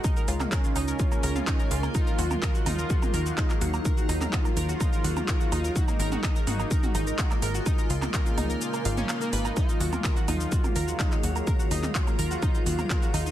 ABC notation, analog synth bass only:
X:1
M:4/4
L:1/8
Q:1/4=126
K:Ebm
V:1 name="Analog synth bass" clef=bass
z D,, z D,, z D,, z D,, | z E,, z E,, z E,, z E,, | z E,, z E,, z E,, z E,, | z A,,, z A,,, z A,,, z A,,, |
z D,, z D,, z A,,, z A,,, | z E,, z E,, z E,, z E,, | z E,, z E,, z E,, z E,, |]